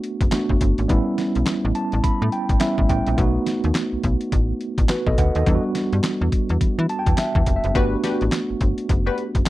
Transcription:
0.00 0.28 A3 medium
0.00 0.29 B3 medium
0.00 0.29 D4 medium
0.00 0.29 F#4 medium
0.00 closed hi-hat medium
0.21 0.29 F#1 medium
0.21 kick loud
0.21 closed hi-hat medium
0.32 0.89 A3 medium
0.32 0.88 B3 soft
0.32 0.89 D4 soft
0.32 0.90 F#4 medium
0.32 snare loud
0.32 clap medium
0.32 closed hi-hat medium
0.49 0.58 G1 medium
0.49 kick loud
0.61 0.73 G1 medium
0.61 kick medium
0.61 closed hi-hat medium
0.78 0.87 G#1 medium
0.78 closed hi-hat soft
0.88 1.02 A1 loud
0.88 2.57 G3 medium
0.88 2.57 B3 medium
0.88 2.58 C#4 medium
0.88 2.58 E4 medium
0.88 kick loud
0.88 closed hi-hat medium
1.18 snare medium
1.18 closed hi-hat medium
1.35 1.44 B1 medium
1.35 closed hi-hat soft
1.46 snare loud
1.46 clap medium
1.46 closed hi-hat medium
1.65 1.72 A1 medium
1.75 2.02 A5 medium
1.75 closed hi-hat medium
1.92 2.01 A1 medium
1.92 closed hi-hat medium
2.04 2.11 A2 soft
2.04 2.30 B5 medium
2.04 kick medium
2.04 closed hi-hat medium
2.22 2.30 A2 loud
2.32 2.59 G5 medium
2.32 closed hi-hat medium
2.49 2.58 A1 medium
2.49 kick loud
2.49 closed hi-hat soft
2.60 3.18 G3 medium
2.60 3.16 B3 soft
2.60 3.18 C#4 medium
2.60 3.18 E4 medium
2.60 2.87 E5 medium
2.60 snare loud
2.60 clap medium
2.60 closed hi-hat medium
2.78 2.86 A1 medium
2.78 kick loud
2.89 3.02 A1 loud
2.89 3.16 G5 medium
2.89 kick medium
2.89 closed hi-hat medium
3.07 3.15 A#1 medium
3.07 closed hi-hat medium
3.17 3.39 B1 loud
3.17 5.42 A3 medium
3.17 5.42 B3 medium
3.17 5.43 D#4 medium
3.17 4.87 F#4 medium
3.17 kick loud
3.17 closed hi-hat medium
3.46 snare medium
3.46 closed hi-hat medium
3.64 3.72 D#2 medium
3.64 closed hi-hat medium
3.75 snare loud
3.75 clap medium
3.75 closed hi-hat medium
3.93 3.97 B1 soft
4.03 4.16 B1 medium
4.03 kick medium
4.03 closed hi-hat medium
4.21 closed hi-hat soft
4.32 4.53 A1 medium
4.32 kick medium
4.32 closed hi-hat medium
4.61 closed hi-hat medium
4.78 4.86 A1 medium
4.78 kick loud
4.78 closed hi-hat soft
4.89 5.06 F#4 medium
4.89 5.06 B4 medium
4.89 snare loud
4.89 clap medium
4.89 closed hi-hat medium
5.07 5.15 B1 medium
5.07 5.18 A4 medium
5.07 5.17 D#5 medium
5.07 kick loud
5.18 5.31 D2 medium
5.18 5.35 B4 medium
5.18 5.34 F#5 medium
5.18 kick medium
5.18 closed hi-hat medium
5.35 5.44 D#2 medium
5.35 5.63 A4 medium
5.35 5.63 D#5 medium
5.35 closed hi-hat soft
5.46 5.59 E2 loud
5.46 7.71 G3 medium
5.46 7.71 B3 medium
5.46 7.71 D4 medium
5.46 5.55 E4 medium
5.46 kick loud
5.46 closed hi-hat medium
5.55 7.75 F#4 medium
5.75 snare medium
5.75 closed hi-hat medium
5.93 6.01 G2 medium
5.93 closed hi-hat medium
6.03 snare loud
6.03 clap medium
6.03 closed hi-hat medium
6.21 6.29 E2 medium
6.32 kick medium
6.32 closed hi-hat medium
6.49 6.58 E2 medium
6.49 closed hi-hat soft
6.61 6.68 E3 soft
6.61 kick loud
6.61 closed hi-hat medium
6.79 6.87 E3 loud
6.89 6.98 A5 medium
6.89 closed hi-hat medium
6.99 7.17 G5 medium
7.06 7.15 E2 medium
7.06 kick loud
7.06 closed hi-hat medium
7.18 7.53 E5 medium
7.18 snare loud
7.18 clap medium
7.18 closed hi-hat medium
7.35 7.43 E2 loud
7.35 kick loud
7.46 7.59 F1 medium
7.46 kick medium
7.46 closed hi-hat medium
7.56 7.74 E5 medium
7.64 7.72 F#1 medium
7.64 closed hi-hat soft
7.74 7.96 G1 medium
7.74 9.49 A3 medium
7.74 9.49 B3 medium
7.74 7.96 D4 medium
7.74 9.49 D4 medium
7.74 7.96 F#4 medium
7.74 9.16 F#4 medium
7.74 7.96 G4 medium
7.74 7.96 B4 loud
7.74 kick loud
7.74 closed hi-hat medium
8.04 8.24 D4 medium
8.04 8.24 F#4 medium
8.04 8.24 G4 medium
8.04 8.25 B4 medium
8.04 snare medium
8.04 closed hi-hat medium
8.21 8.30 A1 medium
8.21 closed hi-hat medium
8.32 snare loud
8.32 clap medium
8.32 closed hi-hat medium
8.50 8.55 G1 soft
8.61 8.73 G1 medium
8.61 kick medium
8.61 closed hi-hat medium
8.78 closed hi-hat soft
8.89 9.10 F#1 loud
8.89 kick medium
8.89 closed hi-hat medium
9.06 9.23 D4 medium
9.06 9.23 F#4 medium
9.06 9.23 G4 medium
9.06 9.23 B4 medium
9.18 closed hi-hat medium
9.35 9.43 F#1 medium
9.35 kick medium
9.35 closed hi-hat medium

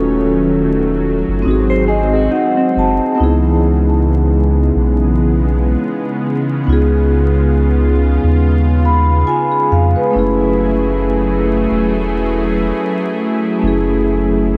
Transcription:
0.00 1.23 D#1 loud
0.00 1.43 D#3 medium
0.00 3.15 F#3 medium
0.00 1.43 A3 medium
0.00 1.39 C#4 medium
0.00 1.41 C#4 medium
0.00 1.40 F4 medium
0.00 1.42 F#4 medium
0.00 1.43 A4 medium
1.28 1.44 F#1 medium
1.42 2.28 G#1 loud
1.42 10.10 G#3 medium
1.42 3.14 C4 medium
1.42 3.17 C4 medium
1.42 3.15 D#4 medium
1.48 3.17 F#4 medium
1.48 3.18 G#4 medium
1.70 1.87 C5 medium
1.88 2.13 G#4 medium
1.88 2.29 D#5 medium
2.13 2.31 F#4 medium
2.31 2.56 D#4 medium
2.31 2.72 F#5 medium
2.57 3.16 C4 medium
2.76 3.00 F#1 medium
2.76 3.17 A5 medium
3.15 10.10 C#3 medium
3.15 6.63 E3 medium
3.15 6.61 B3 medium
3.15 10.10 B3 medium
3.15 6.62 D#4 medium
3.20 4.71 C#2 loud
3.20 6.63 E4 medium
3.20 6.65 G#4 medium
4.76 5.76 B1 medium
6.64 8.19 C#2 loud
6.64 10.09 B3 medium
6.64 10.10 D#4 medium
6.64 10.11 F4 loud
6.69 8.81 F4 medium
6.69 8.83 G#4 medium
8.23 9.24 D#2 medium
8.85 9.25 B5 medium
9.27 9.51 F4 medium
9.27 9.68 G#5 medium
9.52 9.93 G#4 medium
9.72 9.95 F2 loud
9.72 10.12 F5 medium
9.96 10.37 B4 medium
10.10 13.56 A3 medium
10.10 13.58 C#4 medium
10.15 11.66 F#1 loud
10.15 14.57 F#3 medium
10.15 14.57 A3 medium
10.15 14.57 E4 medium
10.15 13.59 E4 medium
10.15 14.57 G#4 medium
10.19 13.60 G#4 medium
11.71 12.72 E1 medium
13.59 14.57 A3 medium
13.59 14.57 C#4 medium
13.63 14.57 F#1 loud
13.63 14.57 E4 medium
13.67 14.57 G#4 medium

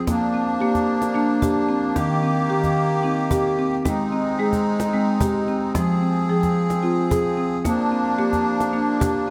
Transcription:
0.07 1.95 F3 medium
0.07 0.57 A#3 medium
0.07 3.82 A#3 medium
0.07 1.95 D4 medium
0.07 cajon bass soft
0.07 cajon slap soft
0.34 0.61 C4 medium
0.61 1.11 A#3 medium
0.61 1.15 G4 medium
0.75 cajon bass soft
0.75 cajon slap soft
1.02 cajon slap soft
1.14 1.92 A#3 medium
1.14 1.42 D4 medium
1.14 cajon slap soft
1.29 cajon slap soft
1.42 1.69 G4 medium
1.42 cajon bass soft
1.69 1.96 C4 medium
1.95 3.83 D#3 medium
1.95 2.46 D#3 medium
1.95 3.83 G4 medium
1.95 cajon bass soft
1.95 cajon slap soft
2.23 2.50 C4 medium
2.49 3.00 D#3 medium
2.49 3.04 G4 medium
2.64 cajon bass soft
2.64 cajon slap soft
3.03 3.31 C4 medium
3.03 3.81 D#4 medium
3.03 cajon slap soft
3.18 cajon slap soft
3.31 3.58 G4 medium
3.31 cajon bass medium
3.59 3.85 C4 medium
3.85 5.73 G#3 medium
3.85 4.35 G#3 medium
3.85 7.61 C4 medium
3.85 5.73 D#4 medium
3.85 cajon bass soft
3.85 cajon slap soft
4.12 4.39 C4 medium
4.39 4.89 G#3 medium
4.39 4.94 G#4 medium
4.53 cajon bass soft
4.80 cajon slap soft
4.93 5.71 G#3 medium
4.93 5.21 C4 medium
5.07 cajon slap soft
5.21 5.48 G4 medium
5.21 cajon bass medium
5.47 5.75 C4 medium
5.47 cajon slap soft
5.74 7.63 F3 medium
5.74 6.25 F3 medium
5.74 7.63 G#4 medium
5.74 cajon bass soft
5.74 cajon slap soft
6.02 6.29 C4 medium
6.29 6.80 F3 medium
6.29 6.84 G#4 medium
6.43 cajon bass soft
6.43 cajon slap soft
6.70 cajon slap soft
6.83 7.11 C4 medium
6.83 7.61 F4 medium
6.83 cajon slap soft
6.98 cajon slap soft
7.11 7.38 G#4 medium
7.11 cajon bass medium
7.38 7.65 C4 medium
7.65 9.30 F3 medium
7.65 8.15 A#3 medium
7.65 9.30 A#3 medium
7.65 9.30 D4 medium
7.65 cajon bass soft
7.65 cajon slap soft
7.92 8.19 C4 medium
8.18 8.69 A#3 medium
8.18 8.73 G4 medium
8.33 cajon bass soft
8.33 cajon slap soft
8.60 cajon slap soft
8.73 9.30 A#3 medium
8.73 9.01 D4 medium
8.73 cajon slap soft
8.87 cajon slap soft
9.00 9.28 G4 medium
9.00 cajon bass medium

